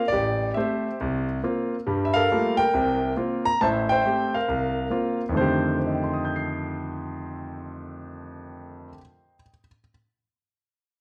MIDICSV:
0, 0, Header, 1, 2, 480
1, 0, Start_track
1, 0, Tempo, 435414
1, 133, Time_signature, 4, 2, 24, 8
1, 12130, End_track
2, 0, Start_track
2, 0, Title_t, "Grand piano"
2, 0, Program_c, 0, 0
2, 89, Note_on_c, 0, 74, 92
2, 135, Note_on_c, 0, 67, 66
2, 144, Note_on_c, 0, 33, 61
2, 555, Note_off_c, 0, 74, 0
2, 556, Note_off_c, 0, 33, 0
2, 599, Note_on_c, 0, 76, 74
2, 620, Note_off_c, 0, 67, 0
2, 628, Note_on_c, 0, 57, 50
2, 630, Note_on_c, 0, 60, 44
2, 630, Note_on_c, 0, 72, 56
2, 636, Note_on_c, 0, 67, 53
2, 960, Note_off_c, 0, 57, 0
2, 961, Note_off_c, 0, 60, 0
2, 1051, Note_off_c, 0, 76, 0
2, 1111, Note_on_c, 0, 36, 68
2, 1381, Note_off_c, 0, 72, 0
2, 1384, Note_off_c, 0, 67, 0
2, 1520, Note_off_c, 0, 36, 0
2, 1582, Note_on_c, 0, 58, 50
2, 1589, Note_on_c, 0, 60, 46
2, 1590, Note_on_c, 0, 65, 60
2, 1917, Note_off_c, 0, 58, 0
2, 1920, Note_off_c, 0, 60, 0
2, 1921, Note_off_c, 0, 65, 0
2, 2058, Note_on_c, 0, 55, 65
2, 2063, Note_on_c, 0, 43, 59
2, 2260, Note_on_c, 0, 76, 69
2, 2354, Note_on_c, 0, 77, 97
2, 2370, Note_off_c, 0, 76, 0
2, 2376, Note_on_c, 0, 70, 68
2, 2382, Note_on_c, 0, 69, 63
2, 2472, Note_off_c, 0, 55, 0
2, 2475, Note_off_c, 0, 43, 0
2, 2555, Note_on_c, 0, 58, 48
2, 2556, Note_on_c, 0, 55, 45
2, 2557, Note_on_c, 0, 57, 43
2, 2560, Note_on_c, 0, 65, 51
2, 2811, Note_off_c, 0, 77, 0
2, 2835, Note_off_c, 0, 70, 0
2, 2836, Note_on_c, 0, 79, 101
2, 2852, Note_on_c, 0, 70, 72
2, 2883, Note_off_c, 0, 58, 0
2, 2884, Note_off_c, 0, 55, 0
2, 2884, Note_off_c, 0, 57, 0
2, 2886, Note_off_c, 0, 65, 0
2, 2970, Note_off_c, 0, 69, 0
2, 3017, Note_on_c, 0, 36, 63
2, 3026, Note_on_c, 0, 48, 61
2, 3432, Note_off_c, 0, 36, 0
2, 3437, Note_off_c, 0, 48, 0
2, 3437, Note_off_c, 0, 79, 0
2, 3491, Note_on_c, 0, 58, 48
2, 3497, Note_on_c, 0, 65, 59
2, 3498, Note_on_c, 0, 60, 48
2, 3770, Note_off_c, 0, 70, 0
2, 3808, Note_on_c, 0, 82, 96
2, 3831, Note_off_c, 0, 58, 0
2, 3834, Note_off_c, 0, 65, 0
2, 3835, Note_off_c, 0, 60, 0
2, 3957, Note_off_c, 0, 82, 0
2, 3980, Note_on_c, 0, 81, 88
2, 3984, Note_on_c, 0, 45, 61
2, 3986, Note_on_c, 0, 33, 59
2, 3993, Note_on_c, 0, 72, 63
2, 3999, Note_on_c, 0, 76, 74
2, 4052, Note_off_c, 0, 81, 0
2, 4292, Note_on_c, 0, 79, 94
2, 4302, Note_off_c, 0, 76, 0
2, 4305, Note_off_c, 0, 72, 0
2, 4319, Note_on_c, 0, 76, 63
2, 4322, Note_on_c, 0, 72, 68
2, 4396, Note_off_c, 0, 33, 0
2, 4396, Note_off_c, 0, 45, 0
2, 4472, Note_on_c, 0, 57, 45
2, 4473, Note_on_c, 0, 60, 45
2, 4480, Note_on_c, 0, 67, 54
2, 4788, Note_off_c, 0, 79, 0
2, 4789, Note_on_c, 0, 77, 71
2, 4801, Note_on_c, 0, 70, 49
2, 4802, Note_off_c, 0, 57, 0
2, 4802, Note_off_c, 0, 60, 0
2, 4806, Note_off_c, 0, 67, 0
2, 4899, Note_off_c, 0, 76, 0
2, 4901, Note_off_c, 0, 72, 0
2, 4943, Note_on_c, 0, 36, 63
2, 5355, Note_off_c, 0, 36, 0
2, 5405, Note_on_c, 0, 58, 48
2, 5412, Note_on_c, 0, 60, 47
2, 5418, Note_on_c, 0, 65, 54
2, 5698, Note_off_c, 0, 77, 0
2, 5704, Note_off_c, 0, 70, 0
2, 5748, Note_off_c, 0, 58, 0
2, 5752, Note_off_c, 0, 60, 0
2, 5755, Note_off_c, 0, 65, 0
2, 5831, Note_on_c, 0, 41, 61
2, 5866, Note_on_c, 0, 51, 56
2, 5895, Note_on_c, 0, 57, 48
2, 5919, Note_on_c, 0, 72, 69
2, 5930, Note_on_c, 0, 50, 57
2, 5961, Note_on_c, 0, 67, 63
2, 6368, Note_off_c, 0, 72, 0
2, 6384, Note_on_c, 0, 72, 40
2, 6470, Note_on_c, 0, 75, 35
2, 6556, Note_on_c, 0, 79, 34
2, 6653, Note_on_c, 0, 84, 33
2, 6764, Note_on_c, 0, 87, 35
2, 6887, Note_on_c, 0, 91, 31
2, 7011, Note_on_c, 0, 96, 28
2, 9780, Note_off_c, 0, 41, 0
2, 9816, Note_off_c, 0, 51, 0
2, 9844, Note_off_c, 0, 57, 0
2, 9879, Note_off_c, 0, 50, 0
2, 9911, Note_off_c, 0, 67, 0
2, 10290, Note_off_c, 0, 72, 0
2, 10376, Note_off_c, 0, 75, 0
2, 10462, Note_off_c, 0, 79, 0
2, 10558, Note_off_c, 0, 84, 0
2, 10669, Note_off_c, 0, 87, 0
2, 10792, Note_off_c, 0, 91, 0
2, 10916, Note_off_c, 0, 96, 0
2, 12130, End_track
0, 0, End_of_file